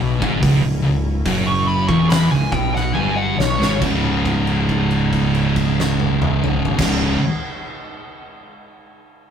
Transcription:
0.00 0.21 B1 medium
0.00 0.19 B2 loud
0.00 3.77 C#3 medium
0.00 3.77 F#3 medium
0.00 3.78 E4 medium
0.20 0.41 G#1 medium
0.20 0.40 G#2 loud
0.20 kick loud
0.41 0.62 C#1 medium
0.41 0.61 C#2 loud
0.41 kick loud
0.41 open hi-hat medium
0.62 0.83 C#1 medium
0.62 0.82 C#2 medium
0.83 1.23 C#1 medium
0.83 1.17 C#2 medium
1.25 1.85 F#1 loud
1.25 1.87 F#2 loud
1.25 kick medium
1.25 open hi-hat medium
1.47 1.67 C#6 medium
1.68 1.88 B5 medium
1.88 2.28 E1 medium
1.88 2.30 E2 loud
1.88 2.09 C#6 medium
1.88 kick medium
2.09 2.30 B5 medium
2.09 snare loud
2.09 open hi-hat medium
2.31 2.51 C#1 medium
2.31 2.52 C#2 medium
2.31 2.51 G#5 loud
2.52 2.92 B1 medium
2.52 2.93 B2 loud
2.52 2.73 G5 medium
2.52 kick medium
2.75 2.94 F#5 medium
2.75 snare soft
2.94 3.35 G1 medium
2.94 3.36 G2 loud
2.94 3.16 G#5 loud
2.94 high tom medium
3.17 3.38 F#5 medium
3.37 3.59 B1 medium
3.37 3.58 B2 medium
3.37 3.80 C#5 medium
3.37 snare medium
3.59 3.81 G#1 medium
3.59 3.78 G#2 loud
3.59 snare medium
3.79 6.64 C#1 medium
3.79 6.76 C#2 medium
3.79 6.79 G#2 loud
3.79 6.63 C#3 medium
3.79 6.80 C#3 loud
3.79 6.63 G#3 medium
3.79 6.63 D#4 medium
3.79 kick medium
3.79 crash medium
4.25 kick medium
4.25 crash soft
4.47 crash soft
4.69 kick medium
4.69 crash soft
4.91 crash soft
5.13 kick medium
5.13 crash soft
5.35 crash soft
5.56 kick medium
5.56 crash medium
5.80 snare loud
6.00 high tom medium
6.22 mid tom medium
6.44 mid tom medium
6.65 floor tom loud
6.77 7.15 C#1 medium
6.77 7.17 C#2 medium
6.77 7.18 G#2 medium
6.77 7.19 C#3 loud
6.77 kick loud
6.77 snare medium
6.77 crash loud

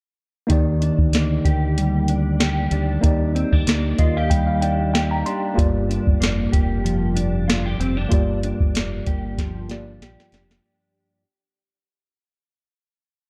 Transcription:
0.47 0.89 D#2 medium
0.47 3.04 D#3 medium
0.47 2.98 A#3 medium
0.47 2.99 D#4 medium
0.47 3.00 G4 medium
0.47 kick loud
0.47 closed hi-hat medium
0.52 3.01 D5 medium
0.82 2.09 D4 medium
0.82 closed hi-hat medium
0.98 1.10 D#2 medium
0.98 kick medium
1.12 1.38 D2 medium
1.12 3.67 A#3 medium
1.12 snare medium
1.12 closed hi-hat medium
1.45 2.68 D2 medium
1.45 2.40 G4 medium
1.45 kick medium
1.45 closed hi-hat medium
1.78 4.31 G3 medium
1.78 closed hi-hat medium
2.08 2.71 D4 medium
2.08 closed hi-hat medium
2.40 3.99 G4 medium
2.40 snare loud
2.40 closed hi-hat medium
2.71 2.97 D2 medium
2.71 3.35 D4 medium
2.71 closed hi-hat medium
3.01 3.43 D#2 medium
3.01 5.53 A#3 medium
3.01 5.53 D#4 medium
3.01 5.54 G4 medium
3.01 kick loud
3.01 closed hi-hat medium
3.06 5.55 D5 medium
3.35 3.53 C4 medium
3.35 closed hi-hat medium
3.52 3.64 D#2 medium
3.52 4.61 D4 medium
3.52 kick medium
3.67 3.92 D2 medium
3.67 6.20 A#3 medium
3.67 snare medium
3.67 closed hi-hat loud
3.99 5.22 D#2 medium
3.99 4.17 F4 medium
3.99 4.15 D#5 medium
3.99 kick medium
3.99 closed hi-hat medium
4.17 4.93 G4 soft
4.17 4.30 F5 medium
4.30 6.84 G3 medium
4.30 4.47 G5 medium
4.30 kick medium
4.30 closed hi-hat medium
4.47 4.61 F5 medium
4.62 5.25 D4 medium
4.62 4.92 G5 medium
4.62 closed hi-hat medium
4.94 6.52 G4 medium
4.94 5.10 G5 medium
4.94 snare loud
4.94 closed hi-hat medium
5.11 5.25 A#5 medium
5.26 5.89 D4 medium
5.26 5.56 C6 medium
5.26 closed hi-hat medium
5.54 5.97 G1 medium
5.54 8.11 G2 medium
5.54 8.06 A#3 medium
5.54 8.07 F4 medium
5.54 8.07 G4 medium
5.58 8.08 D5 medium
5.58 kick medium
5.58 closed hi-hat medium
5.90 7.15 D4 medium
5.90 closed hi-hat medium
6.07 6.19 G1 medium
6.07 kick medium
6.20 6.46 F1 medium
6.20 8.76 A#3 medium
6.20 snare medium
6.20 closed hi-hat medium
6.52 7.76 F1 medium
6.52 7.47 G4 medium
6.52 kick medium
6.52 closed hi-hat medium
6.84 9.38 F3 medium
6.84 closed hi-hat medium
7.15 7.80 D4 medium
7.15 closed hi-hat medium
7.48 7.66 F4 medium
7.48 snare loud
7.48 closed hi-hat medium
7.66 9.06 G4 medium
7.79 8.05 F1 medium
7.79 7.97 C4 medium
7.79 closed hi-hat medium
7.97 8.42 D4 soft
8.09 8.51 G1 medium
8.09 11.23 G2 medium
8.09 9.66 A#3 medium
8.09 9.66 F4 medium
8.09 9.67 G4 medium
8.09 kick loud
8.09 closed hi-hat medium
8.14 9.68 D5 medium
8.43 9.71 D4 medium
8.43 closed hi-hat medium
8.60 8.75 G1 medium
8.60 kick medium
8.75 9.00 F1 medium
8.75 11.23 A#3 medium
8.75 snare loud
8.75 closed hi-hat loud
9.07 9.98 G1 medium
9.07 10.02 G4 medium
9.07 kick medium
9.07 closed hi-hat medium
9.38 11.23 F3 medium
9.38 kick medium
9.38 snare soft
9.38 closed hi-hat medium
9.69 10.65 A#3 medium
9.69 10.34 D4 medium
9.69 10.65 F4 soft
9.69 10.65 G4 medium
9.69 10.66 D5 medium
9.69 snare medium
9.69 closed hi-hat medium
10.01 10.15 A#1 medium
10.01 11.22 G4 medium
10.01 snare medium
10.01 closed hi-hat medium
10.20 snare medium
10.32 10.58 F1 medium
10.32 11.22 D4 medium
10.32 snare medium
10.32 closed hi-hat medium
10.51 snare medium

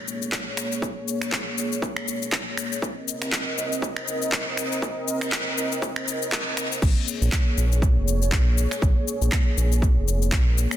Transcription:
0.00 0.34 F1 loud
0.00 2.78 A#3 medium
0.00 2.78 G#4 medium
0.00 2.78 C#5 medium
0.08 shaker medium
0.22 shaker medium
0.32 0.67 A#1 medium
0.32 kick loud
0.32 clap loud
0.32 shaker soft
0.57 finger snap medium
0.57 shaker medium
0.72 shaker soft
0.82 0.94 A#1 loud
0.82 kick loud
0.82 shaker soft
1.08 shaker medium
1.21 1.30 A#1 medium
1.21 finger snap medium
1.21 shaker medium
1.32 kick loud
1.32 clap loud
1.32 shaker soft
1.57 1.98 A#1 medium
1.57 shaker medium
1.72 shaker medium
1.82 kick loud
1.82 shaker soft
1.97 2.34 F1 loud
1.97 finger snap medium
2.08 shaker loud
2.22 shaker medium
2.32 2.67 A#1 medium
2.32 kick loud
2.32 clap medium
2.32 shaker soft
2.57 finger snap medium
2.57 shaker medium
2.72 shaker medium
2.82 2.94 C2 loud
2.82 6.78 C4 medium
2.82 6.78 A#4 medium
2.82 6.78 D#5 medium
2.82 kick loud
2.82 shaker soft
3.08 shaker medium
3.22 3.30 C2 medium
3.22 finger snap medium
3.22 shaker medium
3.32 kick loud
3.32 clap loud
3.32 shaker soft
3.57 3.98 C2 medium
3.57 shaker loud
3.72 shaker medium
3.82 kick loud
3.82 shaker soft
3.97 4.34 F#1 loud
3.97 finger snap medium
4.08 shaker loud
4.22 shaker medium
4.32 4.67 C2 medium
4.32 kick loud
4.32 clap loud
4.32 shaker soft
4.57 finger snap medium
4.57 shaker medium
4.72 shaker medium
4.82 4.94 C2 loud
4.82 kick loud
4.82 shaker soft
5.08 shaker loud
5.21 5.30 C2 medium
5.21 finger snap medium
5.21 shaker medium
5.32 kick loud
5.32 clap loud
5.32 shaker soft
5.57 5.98 C2 medium
5.57 shaker loud
5.72 shaker medium
5.82 kick loud
5.82 shaker soft
5.96 6.29 F#1 loud
5.96 finger snap medium
6.08 shaker loud
6.22 shaker medium
6.32 6.67 F#1 medium
6.32 kick loud
6.32 clap medium
6.32 shaker soft
6.57 finger snap medium
6.57 shaker medium
6.72 shaker medium
6.82 6.94 A#1 loud
6.82 10.77 A#3 medium
6.82 10.77 G#4 medium
6.82 10.77 C#5 medium
6.82 kick loud
6.82 crash loud
6.82 shaker soft
7.08 shaker loud
7.21 7.30 A#1 medium
7.21 shaker medium
7.32 finger snap loud
7.32 kick loud
7.32 clap loud
7.32 shaker soft
7.57 7.98 A#1 loud
7.57 shaker medium
7.72 shaker medium
7.82 kick loud
7.82 shaker soft
7.96 8.34 F1 loud
8.08 shaker medium
8.22 shaker medium
8.32 8.67 A#1 medium
8.32 finger snap loud
8.32 kick loud
8.32 clap loud
8.32 shaker soft
8.58 shaker medium
8.71 finger snap medium
8.71 shaker medium
8.82 8.94 A#1 loud
8.82 kick loud
8.82 shaker soft
9.08 shaker medium
9.21 9.30 A#1 medium
9.21 shaker medium
9.32 finger snap loud
9.32 kick loud
9.32 clap loud
9.32 shaker soft
9.57 9.98 A#1 medium
9.57 shaker loud
9.72 shaker medium
9.82 kick loud
9.82 shaker soft
9.96 10.34 F1 loud
10.08 shaker loud
10.22 shaker medium
10.32 10.67 A#1 medium
10.32 finger snap loud
10.32 kick loud
10.32 clap loud
10.32 shaker soft
10.58 shaker loud
10.71 finger snap medium
10.71 shaker medium

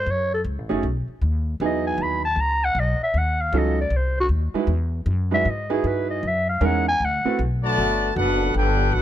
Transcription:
0.00 0.12 C5 loud
0.06 0.44 F#2 medium
0.11 0.33 C#5 loud
0.34 0.41 A4 medium
0.44 0.58 C#2 medium
0.58 0.71 A1 medium
0.69 0.83 F#1 medium
0.69 0.82 A3 medium
0.69 0.82 C#4 medium
0.69 0.82 D#4 medium
0.69 0.82 F#4 medium
0.69 0.82 G#4 medium
0.83 1.06 B1 medium
1.08 muted upright bass stroke soft
1.22 1.59 D#2 medium
1.60 1.97 E2 medium
1.60 2.19 F#3 medium
1.60 2.19 B3 medium
1.60 2.19 D#4 medium
1.60 2.19 E4 medium
1.60 2.19 G#4 medium
1.65 1.86 D#5 medium
1.87 2.04 G#5 loud
1.98 2.36 D#2 loud
2.02 2.24 B5 medium
2.25 2.42 A5 loud
2.36 2.74 C#2 medium
2.41 2.66 A#5 loud
2.64 2.81 F#5 loud
2.75 2.98 B1 loud
2.80 3.02 D#5 loud
3.00 3.19 E5 medium
3.00 muted upright bass stroke soft
3.14 3.51 D#2 medium
3.14 3.43 F#5 medium
3.41 3.59 F5 loud
3.53 3.90 C#2 loud
3.53 3.75 F#3 medium
3.53 3.75 C#4 medium
3.53 3.76 D#4 medium
3.53 3.76 F4 medium
3.53 3.76 A4 medium
3.58 3.80 D#5 medium
3.81 3.98 D5 medium
3.90 4.28 C2 loud
3.96 4.18 C5 medium
4.20 4.27 F#4 loud
4.29 4.52 D#2 medium
4.54 4.67 G#3 medium
4.54 4.67 D#4 medium
4.54 4.67 E4 medium
4.54 4.67 F#4 medium
4.54 4.67 B4 medium
4.54 muted upright bass stroke soft
4.67 5.05 E2 loud
5.06 5.44 F#2 loud
5.31 5.44 G#3 medium
5.31 5.44 D#4 medium
5.31 5.44 E4 medium
5.31 5.44 F#4 medium
5.31 5.44 B4 medium
5.31 5.51 E5 loud
5.45 5.83 G#2 loud
5.50 5.72 D#5 medium
5.70 6.20 D#4 medium
5.70 6.20 E4 medium
5.70 6.20 F#4 medium
5.70 6.20 G#4 medium
5.70 5.88 G#4 medium
5.70 6.20 B4 medium
5.84 6.21 G2 medium
5.84 6.10 B4 medium
6.10 6.29 D#5 medium
6.23 6.60 F#2 loud
6.27 6.48 E5 medium
6.49 6.67 F5 medium
6.61 6.98 E2 loud
6.61 6.83 G#3 medium
6.61 6.83 C#4 medium
6.61 6.83 D#4 medium
6.61 6.83 E4 medium
6.61 6.84 A#4 medium
6.66 6.88 F#5 medium
6.88 7.06 G#5 loud
7.00 7.23 D2 medium
7.04 7.41 F#5 loud
7.25 7.37 A3 medium
7.25 7.37 C4 medium
7.25 7.37 E4 medium
7.25 7.37 F#4 medium
7.25 7.38 B4 medium
7.25 muted upright bass stroke soft
7.39 7.76 B1 loud
7.62 8.11 D3 medium
7.62 8.11 F#3 medium
7.62 8.11 A3 loud
7.62 8.12 F#4 loud
7.62 8.12 B4 medium
7.62 8.12 D5 loud
7.62 8.12 A5 loud
7.76 8.14 G1 medium
7.76 8.84 F#3 medium
7.76 8.84 B3 medium
7.76 8.84 F#4 medium
7.76 8.84 A4 loud
8.13 8.53 F#1 loud
8.13 8.50 B3 medium
8.13 8.51 D4 medium
8.13 8.52 D4 loud
8.13 8.50 F#4 medium
8.13 8.52 A4 medium
8.13 8.52 B4 loud
8.17 8.52 F#5 loud
8.53 8.91 G1 loud
8.53 8.91 B3 medium
8.53 8.92 D4 medium
8.53 8.93 D4 medium
8.53 8.92 G4 medium
8.53 8.93 A4 medium
8.53 8.93 B4 medium
8.53 8.94 G5 loud
8.92 9.02 A1 medium
8.92 9.02 B3 medium
8.92 9.02 D4 medium
8.92 9.02 F#4 medium
8.92 9.02 A4 medium
8.92 9.02 B4 medium
8.92 9.02 F#5 loud

